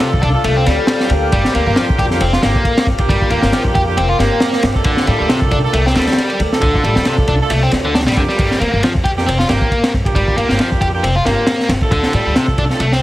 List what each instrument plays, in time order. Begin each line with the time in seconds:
Already playing: horn section A3 D4 F4 A4, ambient pad A4 D5 F5 D6
0.00 overdriven electric guitar C3, ride
0.13 upright bass C2, kick
0.22 upright bass C2, overdriven electric guitar D4, kick, ride
0.34 horn section A3 D4 F4 A4
0.44 upright bass C2, overdriven electric guitar A3, ride
0.57 overdriven electric guitar C4
0.66 upright bass D2, overdriven electric guitar G3, snare, ride
0.87 snare, ride
1.00 snare
1.10 upright bass D2, horn section A#3 D4 F4 G4, ride
1.32 upright bass G1, overdriven electric guitar G3, ambient pad A#4 G5 D6, kick, ride
1.45 snare
1.55 upright bass D2, overdriven electric guitar A#3, ride
1.67 upright bass G1, overdriven electric guitar A#3
1.76 overdriven electric guitar F3, snare, ride
1.90 upright bass F2, kick
1.98 upright bass F2, overdriven electric guitar G4, kick, ride
2.11 horn section A#3 D4 F4 G4, snare
2.20 upright bass F1, overdriven electric guitar C4, ride
2.33 overdriven electric guitar F4, snare
2.42 upright bass G1, overdriven electric guitar A#3, horn section A#3 D4 F4 G4, snare, ride
2.55 kick
2.65 kick, ride
2.78 snare, ride
2.87 upright bass G1, kick
2.98 horn section A#3 D4 F4 G4, kick, ride
3.09 upright bass G1, overdriven electric guitar G3, kick, ride
3.22 kick
3.30 upright bass D2, overdriven electric guitar A#3, ride
3.42 upright bass G1, overdriven electric guitar A#3, snare
3.52 overdriven electric guitar F3, snare, ride
3.64 upright bass F2, kick
3.75 upright bass F2, overdriven electric guitar G4, kick, ride
3.87 horn section A#3 D4 F4 G4
3.97 upright bass F1, overdriven electric guitar C4, ride
4.09 overdriven electric guitar F4
4.19 upright bass G1, overdriven electric guitar A#3, horn section A#3 D4 F4 G4, snare, ride
4.40 snare, ride
4.53 snare
4.63 upright bass G1, snare, ride
4.75 horn section A3 D4 F4 A4, kick
4.84 upright bass D2, overdriven electric guitar D3, ambient pad A4 D5 F5, kick, ride
4.97 snare
5.07 upright bass A2, overdriven electric guitar G3, ride
5.19 upright bass D2, overdriven electric guitar G3
5.29 overdriven electric guitar C3, snare, ride
5.41 upright bass C2, kick
5.51 upright bass C2, overdriven electric guitar D4, kick, ride
5.64 horn section A3 D4 F4 A4
5.73 upright bass C2, overdriven electric guitar A3, ride
5.86 overdriven electric guitar C4, snare
5.95 upright bass D2, overdriven electric guitar G3, horn section A3 D4 F4 A4, snare, ride
6.01 snare, ride
6.07 snare, ride
6.13 snare, ride
6.18 snare, ride
6.30 ride
6.40 upright bass D2, ride
6.52 horn section A3 D4 F4 A4, snare
6.61 upright bass D2, overdriven electric guitar D3, kick, ride
6.75 kick
6.84 upright bass A2, overdriven electric guitar G3, ride
6.96 upright bass D2, overdriven electric guitar G3, snare
7.05 overdriven electric guitar C3, snare, ride
7.18 upright bass C2, kick
7.28 upright bass C2, overdriven electric guitar D4, kick, ride
7.41 horn section A3 D4 F4 A4
7.50 upright bass C2, overdriven electric guitar A3, ride
7.63 overdriven electric guitar C4
7.71 upright bass D2, snare, ride
7.85 overdriven electric guitar D3
7.95 overdriven electric guitar D4, snare, ride
8.01 snare, ride
8.07 upright bass A1, overdriven electric guitar G3, snare, ride
8.12 snare, ride
8.16 upright bass F2, overdriven electric guitar D3, horn section A#3 D4 F4 G4, kick, ride
8.29 overdriven electric guitar G3, snare
8.38 upright bass G1, overdriven electric guitar G3, kick, crash, ride
8.51 snare
8.60 upright bass D2, overdriven electric guitar A#3, ride
8.72 upright bass G1, overdriven electric guitar A#3
8.83 overdriven electric guitar F3, snare, ride
8.95 upright bass F2, kick
9.04 upright bass F2, overdriven electric guitar G4, kick, ride
9.17 horn section A#3 D4 F4 G4, snare
9.27 upright bass F1, overdriven electric guitar C4, ride
9.38 overdriven electric guitar F4, snare
9.49 upright bass G1, overdriven electric guitar A#3, horn section A#3 D4 F4 G4, snare, ride
9.61 kick
9.71 kick, ride
9.84 snare, ride
9.94 upright bass G1, kick
10.05 horn section A#3 D4 F4 G4, kick, ride
10.15 upright bass G1, overdriven electric guitar G3, kick, ride
10.28 kick
10.37 upright bass D2, overdriven electric guitar A#3, ride
10.49 upright bass G1, overdriven electric guitar A#3, snare
10.59 overdriven electric guitar F3, snare, ride
10.72 upright bass F2, kick
10.81 upright bass F2, overdriven electric guitar G4, kick, ride
10.94 horn section A#3 D4 F4 G4
11.03 upright bass F1, overdriven electric guitar C4, ride
11.16 overdriven electric guitar F4
11.25 upright bass G1, horn section A#3 D4 F4 G4, overdriven electric guitar A#3, snare, ride
11.47 snare, ride
11.60 snare
11.69 upright bass G1, snare, ride
11.82 horn section A3 D4 F4 A4, kick
11.91 upright bass D2, overdriven electric guitar D3, kick, ride
12.03 snare
12.13 upright bass A2, overdriven electric guitar G3, ride
12.26 upright bass D2, overdriven electric guitar G3
12.36 overdriven electric guitar C3, snare, ride
12.48 upright bass C2, kick
12.58 upright bass C2, overdriven electric guitar D4, kick, ride
12.70 horn section A3 D4 F4 A4, snare
12.80 upright bass C2, overdriven electric guitar A3, ride
12.92 overdriven electric guitar C4, snare